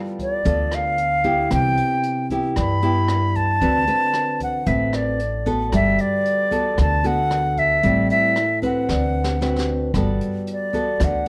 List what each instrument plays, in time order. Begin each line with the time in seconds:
Already playing: nylon-string guitar G3 B3 F4 A4
0.19 flute D5, kick, closed hi-hat
0.45 upright bass D2, nylon-string guitar D3 B3 F4 A4, kick, closed hi-hat
0.71 flute F5, cross-stick, closed hi-hat
0.98 closed hi-hat
1.24 nylon-string guitar B3 E4 G4, kick, closed hi-hat
1.51 upright bass C2, nylon-string guitar C3, flute G5, kick, cross-stick, closed hi-hat
1.77 closed hi-hat
2.03 closed hi-hat
2.30 nylon-string guitar B3 E4 G4, kick, closed hi-hat
2.56 nylon-string guitar G2, upright bass G2, flute B5, kick, cross-stick, closed hi-hat
2.82 nylon-string guitar B3 E4 G4, closed hi-hat
3.08 cross-stick, closed hi-hat
3.35 flute A5, kick, closed hi-hat
3.61 upright bass D2, nylon-string guitar D3 C4 F#4 B4, kick, closed hi-hat
3.87 nylon-string guitar C4 F#4 B4, closed hi-hat
4.13 cross-stick, closed hi-hat
4.40 flute F#5, kick, closed hi-hat
4.66 upright bass A1, nylon-string guitar A2 C4 F#4 B4, flute E5, kick, closed hi-hat
4.93 flute D5, cross-stick, closed hi-hat
5.19 closed hi-hat
5.46 nylon-string guitar B3 F#4 A4, kick, closed hi-hat
5.72 upright bass G1, nylon-string guitar G3, flute E5, kick, cross-stick, closed hi-hat
5.98 flute D5, closed hi-hat
6.25 closed hi-hat
6.51 nylon-string guitar B3 F#4 A4, kick, closed hi-hat
6.78 upright bass D2, nylon-string guitar D3, flute A5, kick, cross-stick, closed hi-hat
7.04 nylon-string guitar B3 F#4 A4, flute F#5, closed hi-hat
7.31 cross-stick, closed hi-hat
7.57 flute E5, kick, closed hi-hat
7.83 upright bass A1, nylon-string guitar A2 G3 C4 E4, kick, closed hi-hat
8.10 flute E5, closed hi-hat
8.36 cross-stick, closed hi-hat
8.62 nylon-string guitar C4 F#4 B4, flute F#5, kick, closed hi-hat
8.89 upright bass D2, nylon-string guitar D3, kick, snare
9.24 snare
9.41 nylon-string guitar C4 F#4 B4, snare
9.59 snare
9.94 upright bass G1, nylon-string guitar G3 B3 F#4 A4, kick, cross-stick, closed hi-hat
10.21 closed hi-hat
10.47 closed hi-hat
10.52 flute D5
10.73 nylon-string guitar B3 F#4 A4, kick, closed hi-hat
11.00 upright bass D2, nylon-string guitar D3, kick, cross-stick, closed hi-hat
11.04 flute F#5